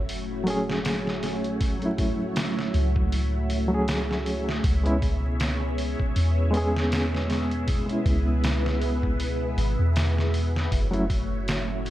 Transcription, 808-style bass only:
Already playing: F#1
1.44 G#1
2.74 C#2
4.64 C#2
6.16 E2
8.06 C#2
9.57 G#1
9.79 E2
10.72 F#1

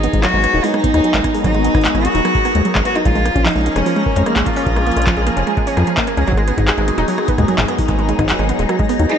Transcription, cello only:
Already playing: D#4
0.24 F#4
0.64 D#4
1.45 D#4
2.05 F#4
2.85 F#4
2.96 D#4
3.06 F4
3.46 D#4
3.76 C#4
4.17 G#3
4.27 A#3
4.47 F4
9.09 D#4

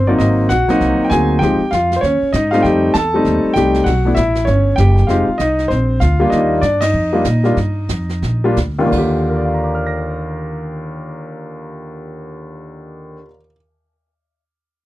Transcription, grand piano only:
0.07 F#3 A#3 C4 D4 D#4 D5
0.18 D#4 D#5
0.49 F#4 F#5
0.68 F#3 A#3 C4 D#4
1.04 G5
1.10 F#3 A#3 C4 D#4 G#4 G#5
1.39 F3 G#3 G4 G5
1.43 C4 D#4
1.71 F4 F5
1.96 C5
2.01 C#4 C#5
2.33 D#4 D#5
2.51 G3 A3 C4 D#4 F4 F5
2.62 G4 G5
2.94 A4 A5
3.14 G3 A3 C4 D#4
3.54 G3 A3 C4 G4 G5
3.58 D#4
3.84 F#4 F#5
4.05 A3 B3 D4 E4
4.15 E4 E5
4.45 C#4 C#5
4.76 G4 G5
5.07 G#3 C4 D#4 F4 G4 F5
5.38 D#4 D#5
5.68 C4 C5
6.00 F4 F5
6.20 G3 A#3 D4 F4
6.30 D#4 D#5
6.61 D4 D5
6.81 D#4 D#5
7.13 G3 A#3 D4 F4
7.44 G3 A#3 D4 F4
8.44 G3 A#3 D4 F4
8.79 D#2 G3 A#3 D4 F4
8.86 D#2
8.90 D3
8.94 F4 G4
9.29 A#4
9.37 D5
9.45 F5
9.54 A#5
9.64 D6
9.75 F6
9.87 A#6

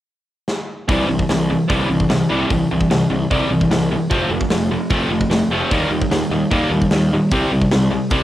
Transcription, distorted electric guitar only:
0.88 C3 E3 G3
1.09 C3 E3
1.30 C3 E3
1.50 C3 E3
1.68 C3 E3 G3
1.89 C3 E3
2.10 C3 E3
2.29 C3 E3 G3
2.50 C3 E3
2.71 C3 E3
2.90 C3 E3
3.10 C3 E3
3.31 C3 E3 G3
3.51 C3 E3
3.71 C3 E3
3.91 C3 E3
4.10 F3 A3 C4
4.31 F3 A3
4.51 F3 A3
4.71 F3 A3
4.90 F3 A3 C4
5.10 F3 A3
5.30 F3 A3
5.51 F3 A3 C4
5.71 D#3 G3 A#3
5.91 D#3 G3
6.11 D#3 G3
6.32 D#3 G3
6.51 D#3 G3 A#3
6.72 D#3 G3
6.93 D#3 G3
7.13 D#3 G3
7.32 C3 G3 C4
7.52 C3 G3
7.71 C3 G3
7.91 C3 G3
8.11 C3 G3 C4

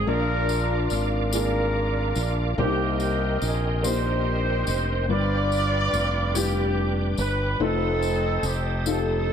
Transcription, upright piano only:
0.07 A#2 A#3 D4 F4 D5
1.33 A#3 D4 F4 G#4
2.57 C3 A#3 D4 G4 C5
2.64 D#4
3.82 A#3 D4 G4 C5
3.89 D#4
5.08 G2 G3 D4 F4 B4
6.34 G3 D4 F4 G4
7.59 A3 D#4 F4 C5
8.85 A3 D#4 F4 G4
8.94 A4

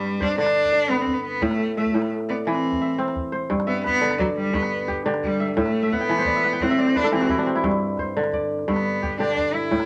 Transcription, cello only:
Already playing: G3
0.22 D4
0.39 D4
0.90 B3
1.02 C4
1.14 B3
1.25 B3
1.43 A3
1.77 A3
2.29 B3
2.46 C4
3.67 B3
3.85 B3
4.20 F#3
4.37 G3
4.55 B3
5.24 G3
5.57 A3
5.93 B3
6.62 C4
6.97 D4
7.14 C4
8.69 B3
9.20 D4
9.54 E4

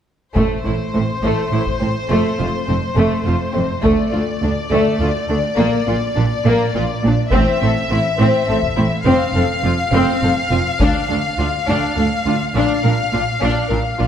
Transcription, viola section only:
0.37 A3
0.66 A3
0.95 A3
1.24 A3
1.54 A3
1.82 A3
2.10 A3
2.39 A3
2.68 A3
2.97 A3
3.26 A3
3.54 A3
3.84 A3
4.14 A3
4.42 A3
4.72 A3
5.00 A3
5.29 A3
5.59 A#3
5.88 A#3
6.16 A#3
6.45 A#3
6.74 A#3
7.03 A#3
7.32 C4
7.61 C4
7.90 C4
8.19 C4
8.48 C4
8.77 C4
9.05 C4
9.36 C4
9.65 C4
9.93 C4
10.22 C4
10.51 C4
10.81 D4
11.10 D4
11.40 D4
11.69 D4
11.98 D4
12.27 D4
12.56 D4
12.86 D4
13.13 D4
13.42 D4
13.71 D4
13.99 D4

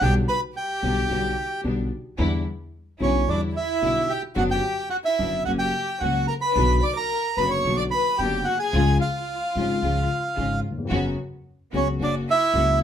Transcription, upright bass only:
0.01 B1
0.83 B1
1.10 B1
1.64 B1
2.19 E2
3.00 B1
3.29 E2
3.82 B1
4.36 F#1
5.19 F#1
5.46 F#1
6.01 C#2
6.56 B1
7.37 F#1
7.65 B1
8.19 F#1
8.73 C#2
9.55 G#1
9.82 C#2
10.37 G#1
10.91 F#1
11.73 C#2
12.00 F#1
12.54 C#2

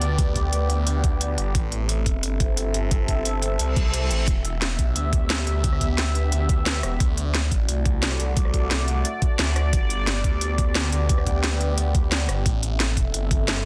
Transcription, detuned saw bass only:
0.02 D2
0.53 D2
0.87 D2
1.38 G1
1.55 A1
2.06 E1
2.23 G1
2.74 G1
3.25 G1
3.60 C2
4.11 A1
4.28 E1
4.79 B1
4.96 D2
5.47 D2
5.98 D2
6.32 D2
6.83 E1
7.00 D2
7.51 A1
7.69 C2
8.20 C2
8.71 C2
9.39 D2
9.73 G1
10.24 D2
10.41 D2
10.92 D2
11.44 D2
11.78 D2
12.29 G1
12.46 A1
12.97 E1
13.14 G1

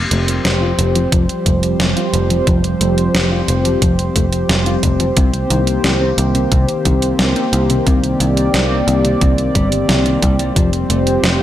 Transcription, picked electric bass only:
0.11 F1
0.45 F1
0.79 F1
1.12 F1
1.46 F1
1.80 F1
2.13 F1
2.47 F1
2.81 F1
3.15 F1
3.48 F1
3.82 F1
4.16 F1
4.49 F1
4.83 F1
5.17 C2
5.50 C2
5.84 C2
6.18 C2
6.52 C2
6.85 C2
7.19 C2
7.53 C2
7.87 C2
8.20 C2
8.54 C2
8.88 C2
9.21 C2
9.55 G1
9.89 C2
10.23 C2
10.56 F1
10.90 F1
11.23 F1

